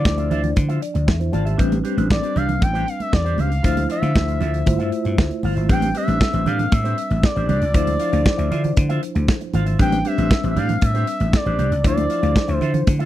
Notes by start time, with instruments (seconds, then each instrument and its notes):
Already playing: tine electric piano F3 D4 E4 C5, analog synth lead D5
0.04 slap bass D2, muted clean electric guitar stroke, kick, snare
0.17 clean electric guitar F4 C5 E5, closed hi-hat, muted conga
0.30 slap bass D2, clean electric guitar F4 C5 E5, closed hi-hat, low conga
0.43 muted clean electric guitar stroke, closed hi-hat, low conga
0.56 slap bass D3, muted clean electric guitar stroke, kick, closed hi-hat, high conga
0.69 clean electric guitar F4 C5 E5, closed hi-hat, muted conga
0.81 tine electric piano D5, muted clean electric guitar stroke, closed hi-hat
0.94 slap bass D2, muted clean electric guitar stroke, closed hi-hat, high conga
1.07 slap bass E2, tine electric piano E5, muted clean electric guitar stroke, kick, snare
1.20 tine electric piano E4 C5, muted clean electric guitar stroke, closed hi-hat, muted conga
1.32 slap bass G#1, clean electric guitar F4 C5 F5, tine electric piano F4 D5 A5, closed hi-hat, high conga, low conga
1.45 clean electric guitar F4 C5 E5, tine electric piano G4 E5, closed hi-hat
1.58 slap bass A1, tine electric piano G3 C4 D4 B4, clean electric guitar D4 G4 C5, kick, closed hi-hat
1.72 closed hi-hat, muted conga, high conga
1.84 clean electric guitar D4 G4 C5, closed hi-hat
1.96 slap bass A1, clean electric guitar D4 G4 C5, closed hi-hat, high conga
2.10 analog synth lead D5, kick, snare
2.22 clean electric guitar D4 G4 C5, closed hi-hat, muted conga
2.35 slap bass C2, clean electric guitar D4 G4 D5, analog synth lead F5, closed hi-hat, low conga
2.48 muted clean electric guitar stroke, closed hi-hat, low conga
2.61 slap bass A1, analog synth lead G5, muted clean electric guitar stroke, kick, closed hi-hat, high conga
2.73 clean electric guitar D4 G4 C5, closed hi-hat
2.87 analog synth lead F5, muted clean electric guitar stroke, closed hi-hat
2.99 analog synth lead E5, muted clean electric guitar stroke, closed hi-hat, high conga
3.13 slap bass E2, analog synth lead D5, kick, snare
3.24 clean electric guitar D4 G4 C5, closed hi-hat
3.38 slap bass C#2, clean electric guitar D4 G4 C5, analog synth lead F5, closed hi-hat, high conga, low conga
3.50 muted clean electric guitar stroke, closed hi-hat
3.63 slap bass D2, tine electric piano F3 D4 E4 C5, clean electric guitar F4 C5 E5, kick, closed hi-hat, muted conga
3.77 closed hi-hat, muted conga, high conga
3.89 clean electric guitar F4 C5 E5, analog synth lead E5, closed hi-hat
4.02 slap bass D3, clean electric guitar F4 C5 F5, closed hi-hat, high conga
4.15 slap bass D2, muted clean electric guitar stroke, kick, snare
4.27 clean electric guitar F4 C5 E5, closed hi-hat
4.40 slap bass D2, clean electric guitar F4 C5 E5, closed hi-hat, low conga
4.53 muted clean electric guitar stroke, closed hi-hat
4.66 slap bass G1, tine electric piano A3 E4 F4 C5, muted clean electric guitar stroke, kick, closed hi-hat, muted conga, high conga
4.79 slap bass G2, clean electric guitar F4 C5 E5, closed hi-hat
4.92 closed hi-hat
5.05 slap bass G2, muted clean electric guitar stroke, closed hi-hat, high conga
5.17 slap bass D2, muted clean electric guitar stroke, kick, snare
5.31 muted clean electric guitar stroke, closed hi-hat, muted conga
5.43 slap bass G1, clean electric guitar F4 C5 F5, open hi-hat, high conga, low conga
5.56 slap bass G#1, clean electric guitar F4 C5 E5, closed hi-hat
5.69 slap bass A1, tine electric piano G3 C4 D4 B4, clean electric guitar D4 G4 C5, analog synth lead G5, kick, closed hi-hat
5.82 closed hi-hat, muted conga, high conga
5.94 clean electric guitar D4 G4 C5, analog synth lead E5, closed hi-hat
6.07 slap bass A1, clean electric guitar D4 G4 C5, closed hi-hat, high conga
6.20 muted clean electric guitar stroke, kick, snare
6.33 slap bass A1, clean electric guitar D4 G4 C5, closed hi-hat, muted conga
6.46 slap bass A2, clean electric guitar D4 G4 D5, analog synth lead F5, closed hi-hat, low conga
6.59 muted clean electric guitar stroke, closed hi-hat, low conga
6.72 slap bass A2, analog synth lead E5, muted clean electric guitar stroke, kick, closed hi-hat, muted conga, high conga
6.84 clean electric guitar D4 G4 C5, closed hi-hat, muted conga
6.97 muted clean electric guitar stroke, closed hi-hat
7.10 slap bass A1, muted clean electric guitar stroke, closed hi-hat, high conga
7.23 analog synth lead D5, muted clean electric guitar stroke, kick, snare
7.36 slap bass A1, clean electric guitar D4 G4 C5, closed hi-hat, muted conga
7.48 slap bass C2, clean electric guitar D4 G4 C5, analog synth lead D5, closed hi-hat, high conga, low conga
7.61 slap bass C#2, muted clean electric guitar stroke, closed hi-hat
7.74 slap bass D2, tine electric piano F3 D4 E4 C5, clean electric guitar F4 C5 E5, analog synth lead D5, kick, closed hi-hat
7.87 closed hi-hat, high conga
8.00 clean electric guitar F4 C5 E5, closed hi-hat
8.12 slap bass D2, clean electric guitar F4 C5 F5, closed hi-hat, high conga
8.25 muted clean electric guitar stroke, kick, snare, muted conga
8.38 slap bass D2, clean electric guitar F4 C5 E5, closed hi-hat
8.51 slap bass D3, clean electric guitar F4 C5 E5, closed hi-hat, low conga
8.64 muted clean electric guitar stroke, closed hi-hat, low conga
8.77 slap bass D3, muted clean electric guitar stroke, kick, closed hi-hat, high conga
8.89 clean electric guitar F4 C5 E5, closed hi-hat, muted conga
9.02 muted clean electric guitar stroke, closed hi-hat
9.15 slap bass D2, muted clean electric guitar stroke, closed hi-hat, high conga
9.28 muted clean electric guitar stroke, kick, snare
9.41 muted clean electric guitar stroke, closed hi-hat, muted conga
9.54 slap bass G#1, clean electric guitar F4 C5 F5, closed hi-hat, high conga, low conga
9.66 clean electric guitar F4 C5 E5, closed hi-hat
9.79 slap bass A1, tine electric piano G3 C4 D4 B4, clean electric guitar D4 G4 C5, analog synth lead G5, kick, closed hi-hat
9.92 closed hi-hat, high conga
10.05 clean electric guitar D4 G4 C5, analog synth lead E5, closed hi-hat
10.18 slap bass A1, clean electric guitar D4 G4 C5, closed hi-hat, high conga
10.30 muted clean electric guitar stroke, kick, snare
10.43 slap bass A1, clean electric guitar D4 G4 C5, closed hi-hat
10.51 analog synth lead E5
10.56 slap bass A2, clean electric guitar D4 G4 D5, analog synth lead F5, closed hi-hat, low conga
10.69 muted clean electric guitar stroke, closed hi-hat, low conga
10.81 slap bass A2, analog synth lead E5, muted clean electric guitar stroke, kick, closed hi-hat, high conga
10.94 clean electric guitar D4 G4 C5, closed hi-hat, muted conga
11.07 muted clean electric guitar stroke, closed hi-hat
11.20 slap bass A1, muted clean electric guitar stroke, closed hi-hat, high conga
11.33 analog synth lead D5, muted clean electric guitar stroke, kick, snare
11.45 slap bass A1, clean electric guitar D4 G4 C5, closed hi-hat, muted conga
11.58 slap bass C2, clean electric guitar D4 G4 C5, closed hi-hat, high conga, low conga
11.71 slap bass C#2, muted clean electric guitar stroke, closed hi-hat
11.84 slap bass D2, tine electric piano F3 D4 E4 C5, clean electric guitar F4 C5 E5, analog synth lead D5, kick, closed hi-hat
11.97 closed hi-hat, muted conga, high conga
12.10 clean electric guitar F4 C5 E5, closed hi-hat
12.23 slap bass D2, clean electric guitar F4 C5 F5, closed hi-hat, high conga
12.36 muted clean electric guitar stroke, kick, snare
12.48 slap bass D2, clean electric guitar F4 C5 E5, closed hi-hat, muted conga
12.55 analog synth lead C5
12.61 slap bass D3, clean electric guitar F4 C5 E5, closed hi-hat, low conga
12.74 muted clean electric guitar stroke, closed hi-hat, low conga
12.87 slap bass D3, muted clean electric guitar stroke, kick, closed hi-hat, high conga
12.99 clean electric guitar F4 C5 E5, closed hi-hat, muted conga